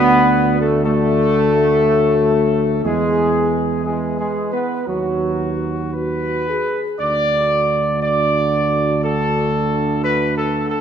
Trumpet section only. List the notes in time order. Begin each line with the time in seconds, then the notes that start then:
Already playing: B4
0.60 A4
0.84 A4
2.84 G#4
3.84 G#4
4.19 G#4
4.51 B4
4.87 F#4
5.93 B4
6.98 D5
8.02 D5
9.02 A4
10.03 B4
10.36 A4
10.70 A4